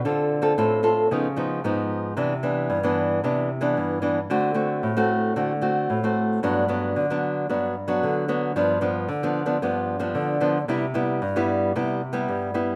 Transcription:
\new Staff \with { instrumentName = "Nylon-string guitar" } { \time 4/4 \key g \major \tempo 4 = 113 << { <c' f' a'>8. <c' f' a'>16 <c' f' a'>8 <c' f' a'>8 <eis b dis'>16 r16 <eis b dis'>8 <eis b dis'>4 | <e b d'>16 r16 <e b d'>8. <e b d'>8. <e b d'>8 r16 <e b d'>8. <e b d'>16 r16 | <a c' fis'>8 <a c' fis'>8. <a c' fis'>8. <a c' fis'>16 r16 <a c' fis'>8. <a c' fis'>8. | <fis b d'>8 <fis b d'>8. <fis b d'>8. <fis b d'>8 r16 <fis b d'>8. <fis b d'>8 |
<f b d'>8 <f b d'>8 r16 <f b d'>8 <f b d'>16 <f b d'>8. <f b d'>8. <f b d'>16 r16 | <g b e'>16 r16 <g b e'>8 r16 <g b e'>8. <g b e'>8 r16 <g b e'>8. <g b e'>8 | } \\ { d4 a,4 cis4 gis,4 | c4 g,4 c4 g,4 | d4 a,4 d4 a,4 | g,4 d4 g,4 d4 |
g,4 d4 g,4 d4 | c4 g,4 c4 g,4 | } >> }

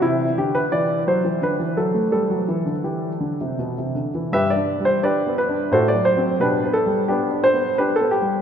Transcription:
<<
  \new Staff \with { instrumentName = "Grand piano" } { \time 3/4 \key g \major \tempo 4 = 86 e'8 g'16 b'16 d''8 c''8 b'8 a'8 | a'4 g'4 r4 | <g' b' e''>16 d''8 c''16 <g' b' d''>8 b'8 <fis' a' c''>16 d''16 c''8 | <d' g' b'>8 a'8 <b d' g'>8 c''8 <d' g' b'>16 a'16 g'8 | }
  \new Staff \with { instrumentName = "Grand piano" } { \clef bass \time 3/4 \key g \major c8 d8 e8 fis16 e16 d16 e16 fis16 a16 | g16 fis16 e16 d16 e8 d16 c16 b,16 c16 d16 e16 | \tuplet 3/2 { g,8 d'8 g8 d'8 b8 d'8 a,8 fis8 <fis c'>8 } | \tuplet 3/2 { b,8 b8 g8 r8 d'8 b8 r8 b8 g8 } | }
>>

